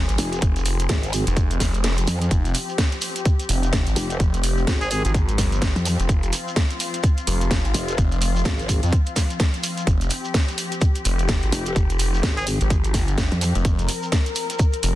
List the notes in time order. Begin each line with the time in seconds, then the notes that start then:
Already playing: F3 C4 G#4
0.09 G#1, closed hi-hat, shekere
0.18 F1, open hi-hat, shekere
0.33 closed hi-hat, shekere
0.42 F1, kick, closed hi-hat, shekere
0.56 closed hi-hat, shekere
0.66 open hi-hat, shekere
0.80 closed hi-hat, shekere
0.89 G#1, kick, snare, closed hi-hat, shekere
1.03 closed hi-hat, shekere
1.13 open hi-hat, shekere
1.27 F1, closed hi-hat, shekere
1.37 kick, closed hi-hat, shekere
1.51 closed hi-hat, shekere
1.60 F1, kick, snare, open hi-hat, shekere
1.74 closed hi-hat, shekere
1.84 snare, closed hi-hat, shekere
1.97 closed hi-hat, shekere
2.07 F2, open hi-hat, shekere
2.22 closed hi-hat, shekere
2.31 F1 G4, kick, closed hi-hat, shekere
2.45 closed hi-hat, shekere
2.54 open hi-hat, shekere
2.69 shekere
2.78 kick, snare, closed hi-hat, shekere
2.92 closed hi-hat, shekere
3.01 open hi-hat, shekere
3.16 closed hi-hat, shekere
3.25 kick, closed hi-hat, shekere
3.39 closed hi-hat, shekere
3.49 F1, open hi-hat, shekere
3.63 closed hi-hat, shekere
3.73 kick, snare, closed hi-hat, shekere
3.87 G#1, closed hi-hat, shekere
3.96 F1, open hi-hat, shekere
4.10 closed hi-hat, shekere
4.20 F1, kick, closed hi-hat, shekere
4.34 closed hi-hat, shekere
4.44 open hi-hat, shekere
4.58 shekere
4.67 G#1, kick, snare, closed hi-hat, shekere
4.81 G#4, closed hi-hat, shekere
4.91 G#4, open hi-hat, shekere
5.05 G#1 G#4, closed hi-hat, shekere
5.14 kick, closed hi-hat, shekere
5.29 closed hi-hat, shekere
5.38 G1, kick, snare, open hi-hat, shekere
5.52 closed hi-hat, shekere
5.62 kick, snare, closed hi-hat, shekere
5.76 F2, closed hi-hat, shekere
5.85 open hi-hat, shekere
5.99 F1, closed hi-hat, shekere
6.09 F1 F4, kick, closed hi-hat, shekere
6.23 closed hi-hat, shekere
6.33 open hi-hat, shekere
6.48 shekere
6.56 kick, snare, closed hi-hat, shekere
6.70 closed hi-hat, shekere
6.80 open hi-hat, shekere
6.94 closed hi-hat, shekere
7.03 kick, closed hi-hat, shekere
7.17 closed hi-hat, shekere
7.27 F1, open hi-hat, shekere
7.41 closed hi-hat, shekere
7.51 kick, snare, closed hi-hat, shekere
7.65 G#1, closed hi-hat, shekere
7.74 F1, open hi-hat, shekere
7.88 closed hi-hat, shekere
7.98 F1, kick, closed hi-hat, shekere
8.12 closed hi-hat, shekere
8.21 open hi-hat, shekere
8.36 shekere
8.45 G#1, kick, snare, closed hi-hat, shekere
8.59 closed hi-hat, shekere
8.69 kick, open hi-hat, shekere
8.83 F2, closed hi-hat, shekere
8.92 kick, closed hi-hat, shekere
9.06 closed hi-hat, shekere
9.16 kick, snare, open hi-hat, shekere
9.30 closed hi-hat, shekere
9.40 kick, snare, closed hi-hat, shekere
9.54 closed hi-hat, shekere
9.63 open hi-hat, shekere
9.77 closed hi-hat, shekere
9.87 F1 G4, kick, closed hi-hat, shekere
10.01 closed hi-hat, shekere
10.10 open hi-hat, shekere
10.24 shekere
10.34 kick, snare, closed hi-hat, shekere
10.48 closed hi-hat, shekere
10.58 open hi-hat, shekere
10.72 closed hi-hat, shekere
10.81 kick, closed hi-hat, shekere
10.95 closed hi-hat, shekere
11.05 F1, open hi-hat, shekere
11.19 closed hi-hat, shekere
11.28 kick, snare, closed hi-hat, shekere
11.43 G#1, closed hi-hat, shekere
11.52 F1, open hi-hat, shekere
11.66 closed hi-hat, shekere
11.76 F1, kick, closed hi-hat, shekere
11.90 closed hi-hat, shekere
11.99 open hi-hat, shekere
12.14 shekere
12.23 G#1, kick, snare, closed hi-hat, shekere
12.37 G#4, closed hi-hat, shekere
12.47 open hi-hat, shekere
12.61 G#1, closed hi-hat, shekere
12.70 kick, closed hi-hat, shekere
12.84 closed hi-hat, shekere
12.94 G1, kick, snare, open hi-hat, shekere
13.08 closed hi-hat, shekere
13.18 kick, snare, closed hi-hat, shekere
13.31 F2, closed hi-hat, shekere
13.41 open hi-hat, shekere
13.55 F1, closed hi-hat, shekere
13.65 F1 A#4, kick, closed hi-hat, shekere
13.79 closed hi-hat, shekere
13.88 open hi-hat, shekere
14.03 shekere
14.12 kick, snare, closed hi-hat, shekere
14.26 closed hi-hat, shekere
14.35 open hi-hat, shekere
14.50 closed hi-hat, shekere
14.59 kick, closed hi-hat, shekere
14.73 closed hi-hat, shekere
14.83 F1, open hi-hat, shekere